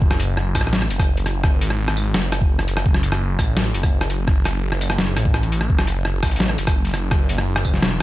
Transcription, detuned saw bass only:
0, 0, Header, 1, 2, 480
1, 0, Start_track
1, 0, Key_signature, 3, "minor"
1, 0, Tempo, 355030
1, 23, Time_signature, 4, 2, 24, 8
1, 10848, End_track
2, 0, Start_track
2, 0, Title_t, "Detuned saw bass"
2, 0, Program_c, 0, 39
2, 22, Note_on_c, 0, 30, 98
2, 723, Note_off_c, 0, 30, 0
2, 744, Note_on_c, 0, 33, 94
2, 1204, Note_off_c, 0, 33, 0
2, 1223, Note_on_c, 0, 30, 93
2, 2164, Note_off_c, 0, 30, 0
2, 2182, Note_on_c, 0, 32, 102
2, 2883, Note_off_c, 0, 32, 0
2, 2904, Note_on_c, 0, 30, 95
2, 3605, Note_off_c, 0, 30, 0
2, 3626, Note_on_c, 0, 30, 98
2, 3846, Note_off_c, 0, 30, 0
2, 3863, Note_on_c, 0, 30, 94
2, 4564, Note_off_c, 0, 30, 0
2, 4584, Note_on_c, 0, 33, 91
2, 5044, Note_off_c, 0, 33, 0
2, 5063, Note_on_c, 0, 30, 90
2, 6004, Note_off_c, 0, 30, 0
2, 6024, Note_on_c, 0, 30, 98
2, 6964, Note_off_c, 0, 30, 0
2, 6983, Note_on_c, 0, 33, 94
2, 7684, Note_off_c, 0, 33, 0
2, 7702, Note_on_c, 0, 30, 98
2, 8403, Note_off_c, 0, 30, 0
2, 8424, Note_on_c, 0, 33, 94
2, 8884, Note_off_c, 0, 33, 0
2, 8903, Note_on_c, 0, 30, 92
2, 9844, Note_off_c, 0, 30, 0
2, 9864, Note_on_c, 0, 30, 101
2, 10564, Note_off_c, 0, 30, 0
2, 10584, Note_on_c, 0, 28, 100
2, 10848, Note_off_c, 0, 28, 0
2, 10848, End_track
0, 0, End_of_file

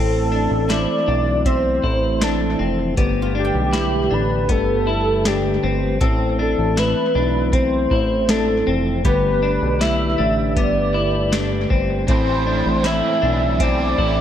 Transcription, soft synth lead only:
0, 0, Header, 1, 2, 480
1, 0, Start_track
1, 0, Key_signature, 0, "minor"
1, 0, Tempo, 759494
1, 1880, Time_signature, 4, 2, 24, 8
1, 8980, End_track
2, 0, Start_track
2, 0, Title_t, "Soft synth lead"
2, 0, Program_c, 0, 80
2, 0, Note_on_c, 0, 69, 95
2, 448, Note_on_c, 0, 74, 108
2, 457, Note_off_c, 0, 69, 0
2, 925, Note_on_c, 0, 72, 100
2, 935, Note_off_c, 0, 74, 0
2, 1412, Note_on_c, 0, 69, 79
2, 1421, Note_off_c, 0, 72, 0
2, 1766, Note_off_c, 0, 69, 0
2, 2140, Note_on_c, 0, 67, 105
2, 2613, Note_on_c, 0, 71, 90
2, 2622, Note_off_c, 0, 67, 0
2, 2850, Note_on_c, 0, 69, 110
2, 2860, Note_off_c, 0, 71, 0
2, 3333, Note_on_c, 0, 67, 84
2, 3342, Note_off_c, 0, 69, 0
2, 3687, Note_off_c, 0, 67, 0
2, 4054, Note_on_c, 0, 69, 89
2, 4291, Note_on_c, 0, 71, 86
2, 4300, Note_off_c, 0, 69, 0
2, 4767, Note_on_c, 0, 72, 97
2, 4776, Note_off_c, 0, 71, 0
2, 5241, Note_on_c, 0, 69, 87
2, 5250, Note_off_c, 0, 72, 0
2, 5600, Note_off_c, 0, 69, 0
2, 5719, Note_on_c, 0, 71, 103
2, 6199, Note_on_c, 0, 76, 110
2, 6208, Note_off_c, 0, 71, 0
2, 6682, Note_on_c, 0, 74, 97
2, 6692, Note_off_c, 0, 76, 0
2, 7401, Note_off_c, 0, 74, 0
2, 7649, Note_on_c, 0, 72, 107
2, 8131, Note_on_c, 0, 76, 110
2, 8140, Note_off_c, 0, 72, 0
2, 8609, Note_on_c, 0, 74, 106
2, 8619, Note_off_c, 0, 76, 0
2, 8980, Note_off_c, 0, 74, 0
2, 8980, End_track
0, 0, End_of_file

